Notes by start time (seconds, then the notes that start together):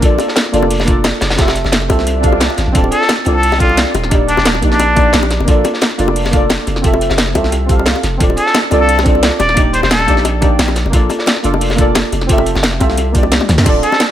0.00 A#1 A#3 D4 F4 A4, kick, closed hi-hat
0.05 D5
0.18 closed hi-hat, high bongo
0.28 snare
0.36 snare, closed hi-hat, high bongo
0.46 snare
0.52 F1 A#3 D4 F4 A4 D5, closed hi-hat
0.62 high bongo
0.70 closed hi-hat, open hi-hat
0.80 snare, high bongo
0.84 A#3 D4 F4, kick, closed hi-hat
0.89 A4 D5
1.04 snare, closed hi-hat, high bongo
1.21 F1, snare, closed hi-hat, high bongo
1.30 snare, closed hi-hat
1.35 C4 F4 G4, kick, snare, closed hi-hat
1.40 A4 E5
1.48 snare, closed hi-hat, high bongo
1.56 closed hi-hat
1.64 F1, snare, high bongo
1.72 snare, closed hi-hat
1.82 snare
1.88 C2 C4 F4 G4 A4 E5, kick, closed hi-hat, high bongo
1.99 snare
2.07 closed hi-hat, swell, high bongo
2.21 C4 F4 G4, kick, closed hi-hat
2.25 A4 F5
2.32 high bongo
2.40 snare, closed hi-hat
2.50 high bongo
2.57 G1, snare, closed hi-hat
2.67 A1
2.72 D1 C4 D4 F4, kick, closed hi-hat
2.77 A4 D5
2.84 high bongo
2.91 A4, closed hi-hat
3.02 snare
3.09 snare, closed hi-hat, high bongo
3.18 snare
3.25 C2 C4 D4 F4, closed hi-hat, high bongo
3.26 A4 D5, closed hi-hat
3.35 A4
3.43 closed hi-hat, open hi-hat
3.52 snare, high bongo
3.57 C4 D4 F4, kick, closed hi-hat
3.62 A4 D5
3.69 high bongo
3.77 snare, closed hi-hat
3.94 D#1, closed hi-hat, high bongo
4.04 snare
4.08 A#3 D4 D#4, kick, closed hi-hat, high bongo
4.13 G4 D5
4.28 D4, closed hi-hat
4.37 D#1, snare, high bongo
4.45 snare, closed hi-hat
4.55 snare, high bongo
4.61 A#1 A#3 D4 D#4 G4 D5, kick, closed hi-hat
4.72 D4, snare
4.79 closed hi-hat, high bongo
4.95 A#3 D4 D#4 G4 D5, kick, closed hi-hat, high bongo
5.13 A#1, snare, closed hi-hat
5.23 high bongo
5.31 snare, closed hi-hat
5.40 F1, high bongo
5.45 A#1 A#3 D4 F4, kick, closed hi-hat
5.49 A4 D5
5.64 closed hi-hat, high bongo
5.74 snare
5.81 snare, closed hi-hat, high bongo
5.91 snare
5.97 F1 A#3 D4 F4 A4 D5, closed hi-hat
6.08 high bongo
6.16 closed hi-hat, open hi-hat
6.25 snare, high bongo
6.30 A#3 D4 F4, kick, closed hi-hat
6.35 A4 D5
6.50 snare, closed hi-hat, high bongo
6.67 F1, closed hi-hat, high bongo
6.76 snare
6.81 C4 F4 G4, kick, closed hi-hat
6.85 A4 E5
6.94 high bongo
7.01 closed hi-hat
7.10 F1, snare, high bongo
7.18 snare, closed hi-hat
7.27 snare
7.34 C2 C4 F4 G4 A4 E5, kick, closed hi-hat, high bongo
7.44 snare
7.52 closed hi-hat, high bongo
7.66 C4 F4 G4, kick, closed hi-hat
7.70 A4 F5
7.79 high bongo
7.86 snare, closed hi-hat
7.96 high bongo
8.03 F1, snare, closed hi-hat
8.17 D1 C4 D4 F4, kick, closed hi-hat
8.22 A4 D5
8.30 high bongo
8.37 A4, closed hi-hat
8.46 snare
8.54 snare, closed hi-hat, high bongo
8.64 snare
8.70 C2 C4 D4 F4 A4 D5, closed hi-hat, high bongo
8.81 A4
8.88 closed hi-hat, open hi-hat
8.98 snare, high bongo
9.03 C4 D4 F4, kick, closed hi-hat
9.07 A4 D5
9.15 high bongo
9.23 snare, closed hi-hat
9.40 D#1 D5, closed hi-hat, high bongo
9.49 snare
9.54 A#3 D4 D#4, kick, closed hi-hat, high bongo
9.58 G4 D5
9.73 C5, closed hi-hat
9.83 D#1 C5, snare, high bongo
9.91 A4, snare, closed hi-hat
10.00 snare, high bongo
10.06 A#1 A#3 D4 D#4 G4 D5, kick, closed hi-hat
10.17 snare
10.25 closed hi-hat, high bongo
10.41 A#3 D4 D#4 G4 D5, kick, closed hi-hat, high bongo
10.59 A#1, snare, closed hi-hat
10.68 high bongo
10.76 snare, closed hi-hat
10.85 F1, high bongo
10.90 A#1 A#3 D4 F4, kick, closed hi-hat
10.94 A4 D5
11.10 closed hi-hat, high bongo
11.19 snare
11.26 snare, closed hi-hat, high bongo
11.36 snare
11.43 F1 A#3 D4 F4 A4 D5, closed hi-hat
11.54 high bongo
11.61 closed hi-hat, open hi-hat
11.70 snare, high bongo
11.75 A#3 D4 F4, kick, closed hi-hat
11.80 A4 D5
11.95 snare, closed hi-hat, high bongo
12.12 F1, closed hi-hat, high bongo
12.21 snare
12.26 C4 F4 G4, kick, closed hi-hat
12.31 A4 E5
12.38 high bongo
12.46 closed hi-hat
12.55 F1, snare, high bongo
12.63 snare, closed hi-hat
12.73 snare
12.79 C2 C4 F4 G4 A4 E5, kick, closed hi-hat, high bongo
12.90 snare
12.97 closed hi-hat, high bongo
13.12 A#3 D4 F4, kick, closed hi-hat
13.16 G4 D5
13.23 high bongo
13.32 snare, closed hi-hat
13.41 high tom, high bongo
13.49 D2, snare, closed hi-hat, mid tom
13.58 F2, snare
13.63 D1 C4 D4 F4, kick, closed hi-hat, crash, high bongo
13.68 A4 D5
13.83 A4, closed hi-hat
13.92 snare, high bongo
14.00 snare, closed hi-hat